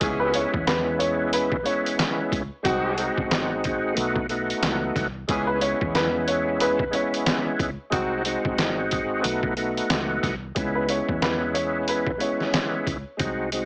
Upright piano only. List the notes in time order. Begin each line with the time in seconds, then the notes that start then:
0.20 B4
0.35 C#5
0.67 B4
0.99 C#5
1.33 B4
1.66 C#5
5.47 B4
5.62 C#5
5.95 B4
6.28 C#5
6.61 B4
6.94 C#5
10.75 B4
10.90 C#5
11.23 B4
11.54 C#5
11.89 B4
12.21 C#5